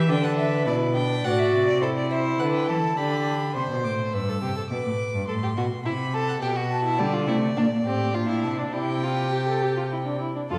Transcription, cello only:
Already playing: E3
0.09 D3
0.67 B2
1.24 A2
1.53 C3
2.40 D3
2.69 E3
2.98 D3
3.56 C3
3.70 B2
3.85 A2
4.13 G2
4.42 C3
4.71 B2
4.86 A2
5.14 G2
5.28 A2
5.57 B2
5.85 C3
6.42 B2
6.99 D3
7.28 C3
7.56 A#2
7.85 A2
8.14 A#2
8.44 C3
8.73 C3
10.50 F2

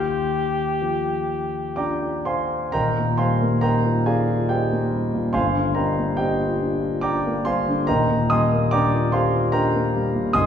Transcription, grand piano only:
Already playing: D#2 G4 G5
0.82 F3
1.76 D4 F4 D5 G5 A#5 D6
2.25 C5 F5 G#5 C6
2.72 D#1 D#2 A#4 D#5 G5 A#5
2.99 A#2
3.18 G3 C5 F5 G#5 C6
3.42 A#3
3.61 D#4 A#4 D#5 G5 A#5
3.85 F4
4.06 D#4 G#4 D5 F5 G#5
4.30 F4
4.49 D#4 G4 C5 D#5 G5
4.72 A#3
4.93 G3
5.14 A#2
5.33 G1 G2 C5 F5 G#5 C6
5.56 D3
5.75 G3 A#4 D#5 G5 A#5
5.99 A#3
6.17 D4 G4 C5 D#5 G5
6.41 F4
6.61 D4
6.82 F4
7.01 D4 D5 G5 A#5 D6
7.26 A#3
7.45 G3 C5 F5 G#5 C6
7.68 D3
7.87 D#1 D#2 A#4 D#5 G5 A#5
8.11 A#2
8.30 G3 D#5 G#5 C6 D#6
8.53 A#3
8.71 D4 D5 G5 A#5 D6
8.94 F4
9.12 G4 C5 F5 G#5 C6
9.34 F4
9.52 D4 A#4 D#5 G5 A#5
9.75 A#3
9.95 G3
10.15 A#2
10.33 F#1 F#2 D#5 G#5 C6 D#6

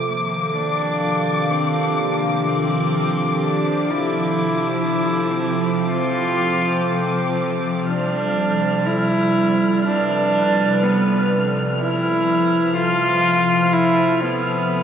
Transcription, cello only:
0.06 A#3
0.54 D4
1.51 C4
1.99 A#3
2.47 C4
3.44 D4
3.92 E4
5.88 F4
7.87 D4
8.86 E4
9.85 D4
10.84 B3
11.79 E4
12.76 F4
13.73 E4
14.23 B3

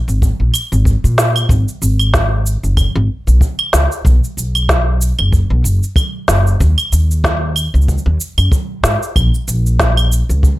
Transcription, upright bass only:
0.08 G#1
0.40 A#1
0.72 G#1
1.04 A#2
1.49 G#1
1.82 G#1
2.63 F#1
2.96 G#1
3.27 B1
3.73 C#2
4.05 B1
4.37 B1
5.19 F#1
5.50 B1
5.64 F#1
6.28 F#1
6.61 D#2
6.92 D#2
7.74 C#2
8.06 D#2
8.38 F#2
8.83 G#2
9.16 A#1
9.48 A#1
10.29 C#2

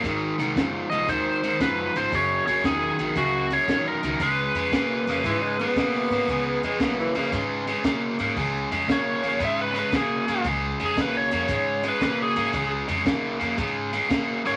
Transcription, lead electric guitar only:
0.90 D#5
1.09 C5
1.62 B4
1.97 C5
2.15 C#5
2.46 C#5
2.65 G#4
3.18 F#4
3.53 C#5
3.88 A#4
4.22 B4
8.92 C#5
9.45 E5
9.61 B4
9.79 B4
9.97 G#4
10.85 G#4
11.02 B4
11.17 C#5
11.89 B4
12.03 B4
12.22 G#4
14.47 C#5

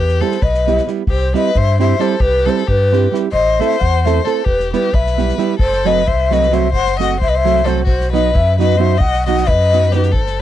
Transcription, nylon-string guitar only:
0.21 G3 B3 E4 G4
0.67 G3 B3 E4 G4
0.87 G3 B3 E4 G4
1.34 G3 C4 E4 G4
1.79 G3 C4 E4 G4
1.99 G3 C4 E4 G4
2.46 G3 C4 E4 G4
2.93 G3 C4 E4 G4
3.12 G3 C4 E4 G4
3.59 A3 C4 E4 A4
4.06 A3 C4 E4 A4
4.25 A3 C4 E4 A4
4.73 G3 B3 E4 G4
5.18 G3 B3 E4 G4
5.38 G3 B3 E4 G4
5.85 F#3 A3 C4 F#4
6.31 F#3 A3 C4 F#4
6.51 F#3 A3 C4 F#4
6.99 F#3 A3 C4 F#4
7.45 F#3 A3 C4 F#4
7.65 F#3 A3 C4 F#4
8.13 F#3 B3 D#4 F#4
8.59 F#3 B3 D#4 F#4
8.79 F#3 B3 D#4 F#4
9.27 F#3 B3 D#4 F#4
9.73 F#3 B3 D#4 F#4
9.94 F#3 B3 D#4 F#4

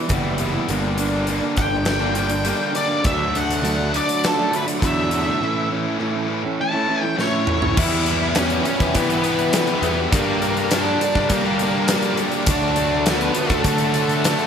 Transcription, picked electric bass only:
0.10 F#1
0.69 G1
1.57 G1
3.05 D2
4.82 E2
7.77 E2
8.80 E2
8.95 E3
9.82 E2
10.12 G2
11.16 G2
11.30 G3
12.47 D2
13.50 D2
13.64 D3

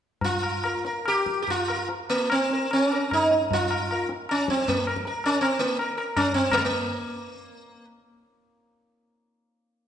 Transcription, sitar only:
0.24 F4
0.65 A#4
0.86 A#4
1.08 G4
1.42 G4
1.50 F4
1.70 A#4
2.10 A#3
2.32 C4
2.53 A#4
2.73 C4
2.84 C#4
2.93 A#4
3.13 D#4
3.53 F4
3.92 A#4
4.31 C#4
4.50 C4
4.68 A#3
4.89 A#4
5.07 A#4
5.26 C#4
5.41 C4
5.59 A#3
5.81 A#4
5.97 A#4
6.17 C#4
6.34 C4
6.53 G#3 A#3
6.65 A#3

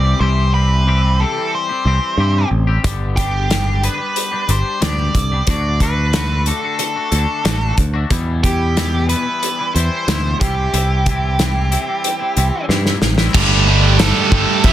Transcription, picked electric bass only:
Already playing: C2
0.20 C2
1.85 C2
2.17 G2
2.51 A1
2.84 G1
4.49 G1
4.82 D2
5.15 C2
5.47 D2
7.12 D2
7.45 A1
7.78 D2
8.11 E2
9.75 E2
10.08 D2
10.41 C2
10.73 C2
12.37 C2
12.69 G2
13.02 A1
13.35 G1
14.32 G1
14.64 E1

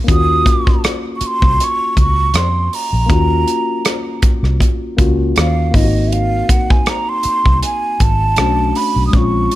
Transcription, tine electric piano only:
0.04 A#3 C#4
0.09 F4 F#4
3.06 A#3 C#4
3.10 F4 F#4
4.97 A#3 C#4 F4 F#4
5.71 A#3 C4
5.76 D#4 F4
5.84 F#4
8.37 A3 C#4 D4 F#4
9.10 G#3 C4
9.14 C#4 F4

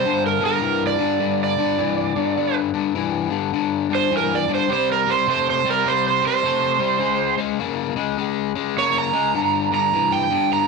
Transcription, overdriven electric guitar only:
0.05 G2 D3
0.41 G2 D3
0.62 G2 E3
0.98 G2 D3
1.20 G2 D3
1.58 G2 D3
1.78 G2 E3
2.16 G2 D3
2.36 G2 D3
2.74 G2 D3
2.95 G2 E3
3.29 G2 D3
3.53 G2 D3
3.89 G2 D3
4.11 G2 E3
4.48 G2 D3
4.69 C3 G3
5.06 C3 G3
5.28 C3 A3
5.65 C3 G3
5.85 C3 G3
6.22 C3 G3
6.44 C3 A3
6.79 C3 G3
6.99 C#3 G#3
7.38 C#3 G#3
7.59 C#3 A#3
7.96 C#3 G#3
8.17 C#3 G#3
8.55 C#3 G#3
8.77 C#3 A#3
9.13 C#3 G#3
9.34 G2 D3
9.71 G2 D3
9.93 G2 E3
10.30 G2 D3
10.51 G2 D3

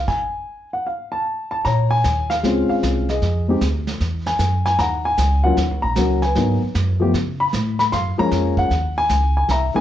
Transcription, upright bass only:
1.65 A#2
2.05 D#2
2.43 C#2
2.83 C2
3.22 F2
3.61 D2
4.01 E2
4.39 F#2
4.79 D#2
5.18 C#2
5.57 D#2
5.71 C#2
5.84 A#1
5.97 C#2
6.36 G#2
6.63 muted upright bass stroke
6.75 F#2
7.14 C#3
7.54 A2
7.93 F#2
8.19 muted upright bass stroke
8.32 F2
8.70 D#2
9.09 C#2
9.48 C2

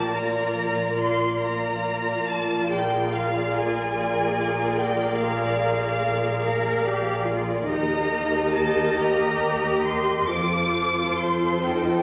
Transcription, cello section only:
Already playing: G4
0.14 F4
6.44 A#4
6.86 G4
7.28 F4
7.69 D#4
8.95 G4
10.28 F4
11.65 D#4

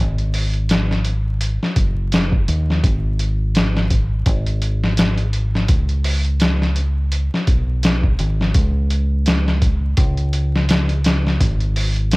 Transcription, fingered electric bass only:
0.00 G#1
1.76 F#1
2.48 D#2
2.84 G#1
4.27 G#1
5.69 C#2
7.48 B1
8.20 G#1
8.55 C#2
9.98 C#2
11.41 G#1

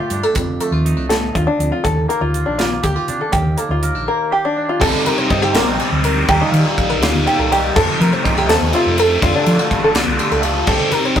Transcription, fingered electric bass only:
0.10 G2
0.36 F1
0.71 D#2
0.97 C2
1.35 D#2
1.59 D2
1.84 D#2
2.21 D2
2.46 A#1
2.84 D2
3.08 C3
3.33 D#2
3.69 D2
3.95 A#1
4.82 C2
5.06 C3
5.30 G2
5.54 A#1
5.67 A#1
5.91 D2
6.29 D#2
6.52 D#3
6.77 A#1
7.02 D2
7.14 D2
7.39 C2
7.76 F2
8.00 F3
8.25 C2
8.49 D#2
8.61 D#2
8.86 F2
9.22 F2
9.46 F3
9.71 A1
9.95 C2
10.07 C2
10.31 C#2
10.67 C2
10.92 C3
11.16 G2

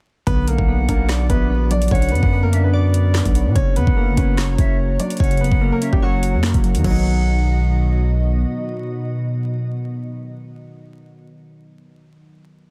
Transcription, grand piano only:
0.27 B3 B4
0.48 A#3 A#4
0.89 A#3 A#4
1.30 B3 B4
1.71 D4 D5
1.92 C#4 C#5
2.12 B3 B4
2.43 A#3 A#4
2.64 B3 B4
3.55 C#4 C#5
3.76 B3 B4
4.17 B3 B4
4.59 C#4 C#5
5.00 D4 D5
5.20 C#4 C#5
5.41 B3 B4
5.72 A#3 A#4
5.93 G3 G4
6.03 F#3 F#4
6.84 F#3

